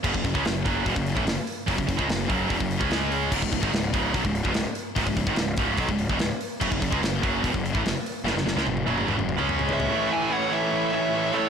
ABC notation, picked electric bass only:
X:1
M:4/4
L:1/16
Q:1/4=146
K:F#dor
V:1 name="Picked electric bass" clef=bass
F,,, F,,, F,,, C,, F,,,2 F,,,2 E,,, F,,,2 A,,, F,,, z3 | F,,, F,,, F,,, C,, F,,,2 F,,,2 E,,, F,,,2 C,,4- C,, | C,,, C,,, C,,, G,,, C,,,2 C,,,2 B,,, C,,,2 E,,, C,,, z3 | C,,, C,,, C,,, G,,, C,,,2 C,,,2 B,,, C,,,2 E,,, C,,, z3 |
F,,, F,,, F,,, C,, F,,,2 F,,,2 E,,, F,,,2 A,,, F,,, z3 | F,,, F,,, F,,, C,, F,,,2 F,,,2 E,,, F,,,2 C,,4- C,, | z16 |]